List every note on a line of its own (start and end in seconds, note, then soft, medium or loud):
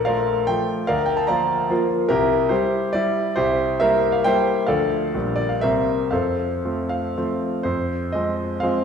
0.00 0.51 A#1 medium
0.00 0.51 A4 medium
0.00 0.06 A#4 medium
0.00 0.06 D5 medium
0.05 0.45 F3 soft
0.05 0.45 A3 soft
0.05 0.45 F4 medium
0.05 0.45 A#4 medium
0.05 0.46 D5 medium
0.05 0.48 F5 medium
0.47 0.84 F3 medium
0.47 0.85 A3 medium
0.47 0.85 F4 medium
0.47 0.88 G5 loud
0.87 1.28 D2 medium
0.87 1.07 A#4 medium
0.87 1.07 D5 medium
0.87 1.08 F5 loud
1.06 1.17 G5 medium
1.17 1.28 A5 medium
1.27 1.67 F3 medium
1.27 1.67 A#3 soft
1.27 1.67 F4 medium
1.27 1.86 D5 medium
1.27 1.86 F5 medium
1.27 1.89 A#5 medium
1.70 2.05 F3 medium
1.70 2.06 A#3 medium
1.70 2.06 F4 medium
2.09 2.50 C2 medium
2.09 2.48 E4 medium
2.09 2.49 G4 medium
2.09 2.51 A#4 medium
2.49 2.90 G3 medium
2.49 2.91 E4 medium
2.49 2.91 G4 medium
2.49 2.94 C5 medium
2.93 3.33 G3 medium
2.93 3.33 E4 medium
2.93 3.36 D5 medium
3.36 3.79 C2 medium
3.36 3.77 E4 medium
3.36 3.77 G4 medium
3.36 3.80 C5 medium
3.80 4.22 G3 soft
3.80 4.22 A#3 soft
3.80 4.22 E4 medium
3.80 4.12 A#4 medium
3.80 4.12 C5 medium
3.80 4.14 E5 loud
4.12 4.24 F5 medium
4.24 4.65 G3 medium
4.24 4.65 A#3 medium
4.24 4.66 E4 medium
4.24 4.66 C5 medium
4.24 4.66 E5 medium
4.24 4.69 G5 loud
4.67 5.13 D2 medium
4.67 5.11 F3 soft
4.67 5.11 A3 soft
4.67 5.11 D4 soft
4.67 5.35 A4 medium
4.67 5.34 D5 medium
4.67 5.38 F5 medium
5.14 5.61 A#1 medium
5.14 5.59 G3 soft
5.14 5.59 A#3 soft
5.14 5.60 D4 soft
5.36 5.49 D5 medium
5.49 5.62 F5 medium
5.61 6.11 C2 medium
5.61 6.08 G3 soft
5.61 6.09 A#3 soft
5.61 6.09 C4 soft
5.61 6.09 A#4 medium
5.61 6.09 C5 medium
5.61 6.12 E5 medium
6.11 6.63 F2 medium
6.11 7.13 A4 medium
6.11 7.13 C5 medium
6.11 6.88 F5 medium
6.65 7.13 F3 soft
6.65 7.13 A3 soft
6.65 7.13 C4 soft
6.89 7.65 F5 medium
7.17 7.62 F3 soft
7.17 7.63 A3 soft
7.17 7.63 C4 medium
7.63 8.12 F2 medium
7.63 8.13 C5 medium
8.12 8.59 F3 soft
8.12 8.59 G#3 soft
8.12 8.59 C4 medium
8.12 8.62 D#5 medium
8.60 8.84 F3 medium
8.60 8.84 G#3 medium
8.60 8.84 C4 medium
8.60 8.84 F5 medium